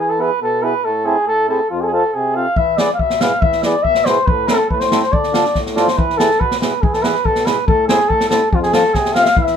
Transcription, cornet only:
0, 0, Header, 1, 2, 480
1, 0, Start_track
1, 0, Tempo, 430108
1, 931, Time_signature, 2, 2, 24, 8
1, 5724, Tempo, 423131
1, 10757, End_track
2, 0, Start_track
2, 0, Title_t, "Cornet"
2, 0, Program_c, 0, 56
2, 0, Note_on_c, 0, 68, 78
2, 105, Note_on_c, 0, 69, 75
2, 122, Note_off_c, 0, 68, 0
2, 236, Note_on_c, 0, 71, 85
2, 253, Note_off_c, 0, 69, 0
2, 463, Note_off_c, 0, 71, 0
2, 473, Note_on_c, 0, 69, 85
2, 702, Note_on_c, 0, 71, 84
2, 719, Note_off_c, 0, 69, 0
2, 946, Note_on_c, 0, 69, 81
2, 962, Note_off_c, 0, 71, 0
2, 1176, Note_on_c, 0, 68, 88
2, 1193, Note_off_c, 0, 69, 0
2, 1416, Note_off_c, 0, 68, 0
2, 1422, Note_on_c, 0, 69, 93
2, 1642, Note_off_c, 0, 69, 0
2, 1653, Note_on_c, 0, 69, 82
2, 1878, Note_off_c, 0, 69, 0
2, 1898, Note_on_c, 0, 65, 74
2, 2017, Note_on_c, 0, 68, 84
2, 2034, Note_off_c, 0, 65, 0
2, 2040, Note_on_c, 0, 69, 65
2, 2057, Note_off_c, 0, 68, 0
2, 2071, Note_on_c, 0, 68, 89
2, 2087, Note_off_c, 0, 69, 0
2, 2133, Note_off_c, 0, 68, 0
2, 2154, Note_on_c, 0, 69, 87
2, 2383, Note_on_c, 0, 68, 84
2, 2400, Note_off_c, 0, 69, 0
2, 2626, Note_on_c, 0, 77, 94
2, 2643, Note_off_c, 0, 68, 0
2, 2867, Note_on_c, 0, 76, 85
2, 2884, Note_off_c, 0, 77, 0
2, 3098, Note_on_c, 0, 74, 88
2, 3115, Note_off_c, 0, 76, 0
2, 3270, Note_off_c, 0, 74, 0
2, 3277, Note_on_c, 0, 77, 73
2, 3336, Note_on_c, 0, 76, 80
2, 3353, Note_off_c, 0, 77, 0
2, 3581, Note_on_c, 0, 77, 88
2, 3598, Note_off_c, 0, 76, 0
2, 3809, Note_on_c, 0, 76, 93
2, 3826, Note_off_c, 0, 77, 0
2, 4051, Note_off_c, 0, 76, 0
2, 4061, Note_on_c, 0, 74, 84
2, 4276, Note_on_c, 0, 76, 96
2, 4293, Note_off_c, 0, 74, 0
2, 4521, Note_on_c, 0, 72, 81
2, 4537, Note_off_c, 0, 76, 0
2, 4752, Note_on_c, 0, 71, 93
2, 4769, Note_off_c, 0, 72, 0
2, 4999, Note_on_c, 0, 69, 82
2, 5015, Note_off_c, 0, 71, 0
2, 5235, Note_off_c, 0, 69, 0
2, 5242, Note_on_c, 0, 71, 87
2, 5354, Note_on_c, 0, 72, 84
2, 5371, Note_off_c, 0, 71, 0
2, 5599, Note_off_c, 0, 72, 0
2, 5604, Note_on_c, 0, 72, 90
2, 5724, Note_on_c, 0, 74, 75
2, 5741, Note_off_c, 0, 72, 0
2, 6256, Note_off_c, 0, 74, 0
2, 6449, Note_on_c, 0, 72, 72
2, 6680, Note_on_c, 0, 71, 84
2, 6697, Note_off_c, 0, 72, 0
2, 6914, Note_on_c, 0, 69, 90
2, 6931, Note_off_c, 0, 71, 0
2, 7162, Note_on_c, 0, 71, 87
2, 7180, Note_off_c, 0, 69, 0
2, 7391, Note_off_c, 0, 71, 0
2, 7398, Note_on_c, 0, 71, 73
2, 7643, Note_on_c, 0, 68, 70
2, 7660, Note_off_c, 0, 71, 0
2, 7771, Note_on_c, 0, 69, 80
2, 7788, Note_off_c, 0, 68, 0
2, 7875, Note_on_c, 0, 71, 86
2, 7892, Note_off_c, 0, 69, 0
2, 8132, Note_on_c, 0, 69, 86
2, 8149, Note_off_c, 0, 71, 0
2, 8367, Note_on_c, 0, 71, 83
2, 8384, Note_off_c, 0, 69, 0
2, 8598, Note_off_c, 0, 71, 0
2, 8605, Note_on_c, 0, 69, 88
2, 8832, Note_off_c, 0, 69, 0
2, 8839, Note_on_c, 0, 68, 98
2, 9076, Note_on_c, 0, 69, 95
2, 9093, Note_off_c, 0, 68, 0
2, 9307, Note_off_c, 0, 69, 0
2, 9313, Note_on_c, 0, 69, 87
2, 9544, Note_off_c, 0, 69, 0
2, 9566, Note_on_c, 0, 65, 75
2, 9680, Note_off_c, 0, 65, 0
2, 9685, Note_on_c, 0, 68, 95
2, 9811, Note_on_c, 0, 69, 94
2, 9828, Note_off_c, 0, 68, 0
2, 10048, Note_on_c, 0, 68, 87
2, 10065, Note_off_c, 0, 69, 0
2, 10272, Note_on_c, 0, 77, 95
2, 10289, Note_off_c, 0, 68, 0
2, 10364, Note_on_c, 0, 76, 75
2, 10381, Note_off_c, 0, 77, 0
2, 10399, Note_on_c, 0, 77, 93
2, 10416, Note_off_c, 0, 76, 0
2, 10522, Note_off_c, 0, 77, 0
2, 10530, Note_on_c, 0, 76, 80
2, 10757, Note_off_c, 0, 76, 0
2, 10757, End_track
0, 0, End_of_file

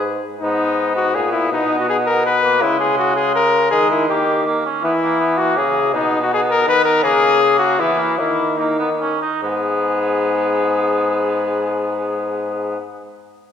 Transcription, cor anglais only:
0, 0, Header, 1, 2, 480
1, 0, Start_track
1, 0, Key_signature, 5, "minor"
1, 0, Tempo, 368098
1, 544, Time_signature, 3, 2, 24, 8
1, 9179, Tempo, 380228
1, 10619, Tempo, 407886
1, 11579, Tempo, 429492
1, 16638, End_track
2, 0, Start_track
2, 0, Title_t, "Cor anglais"
2, 0, Program_c, 0, 69
2, 560, Note_on_c, 0, 59, 75
2, 1458, Note_off_c, 0, 59, 0
2, 1500, Note_on_c, 0, 59, 70
2, 1966, Note_off_c, 0, 59, 0
2, 1974, Note_on_c, 0, 59, 77
2, 2917, Note_off_c, 0, 59, 0
2, 2943, Note_on_c, 0, 59, 69
2, 3185, Note_on_c, 0, 58, 77
2, 3204, Note_off_c, 0, 59, 0
2, 3420, Note_on_c, 0, 56, 81
2, 3439, Note_off_c, 0, 58, 0
2, 4844, Note_off_c, 0, 56, 0
2, 4852, Note_on_c, 0, 56, 75
2, 5342, Note_on_c, 0, 58, 67
2, 5362, Note_off_c, 0, 56, 0
2, 5774, Note_off_c, 0, 58, 0
2, 5816, Note_on_c, 0, 58, 79
2, 6042, Note_off_c, 0, 58, 0
2, 6065, Note_on_c, 0, 61, 81
2, 6300, Note_off_c, 0, 61, 0
2, 6315, Note_on_c, 0, 59, 66
2, 6420, Note_off_c, 0, 59, 0
2, 6560, Note_on_c, 0, 58, 77
2, 6770, Note_off_c, 0, 58, 0
2, 6777, Note_on_c, 0, 59, 69
2, 7027, Note_on_c, 0, 58, 70
2, 7047, Note_off_c, 0, 59, 0
2, 7728, Note_off_c, 0, 58, 0
2, 7736, Note_on_c, 0, 59, 69
2, 8209, Note_off_c, 0, 59, 0
2, 8228, Note_on_c, 0, 59, 67
2, 8693, Note_off_c, 0, 59, 0
2, 8718, Note_on_c, 0, 59, 73
2, 9178, Note_on_c, 0, 58, 75
2, 9197, Note_off_c, 0, 59, 0
2, 9647, Note_off_c, 0, 58, 0
2, 9658, Note_on_c, 0, 58, 68
2, 10130, Note_on_c, 0, 59, 78
2, 10149, Note_off_c, 0, 58, 0
2, 10364, Note_on_c, 0, 58, 73
2, 10382, Note_off_c, 0, 59, 0
2, 10604, Note_off_c, 0, 58, 0
2, 10612, Note_on_c, 0, 58, 65
2, 11033, Note_off_c, 0, 58, 0
2, 11104, Note_on_c, 0, 58, 73
2, 11323, Note_off_c, 0, 58, 0
2, 11337, Note_on_c, 0, 59, 70
2, 11447, Note_off_c, 0, 59, 0
2, 11593, Note_on_c, 0, 61, 80
2, 11816, Note_off_c, 0, 61, 0
2, 11823, Note_on_c, 0, 63, 74
2, 12055, Note_off_c, 0, 63, 0
2, 12066, Note_on_c, 0, 59, 73
2, 15797, Note_off_c, 0, 59, 0
2, 16638, End_track
0, 0, End_of_file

